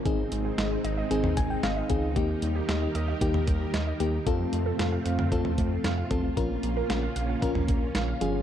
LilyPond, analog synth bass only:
\new Staff \with { instrumentName = "Analog synth bass" } { \clef bass \time 4/4 \key bes \dorian \tempo 4 = 114 aes,,8 aes,,8 aes,,8 aes,,8 aes,,8 aes,,8 aes,,8 des,8 | ees,8 ees,8 ees,8 ees,8 ees,8 ees,8 ees,8 ees,8 | f,8 f,8 f,8 f,8 f,8 f,8 f,8 a,,8 | bes,,8 bes,,8 bes,,8 bes,,8 bes,,8 bes,,8 bes,,8 g,,8 | }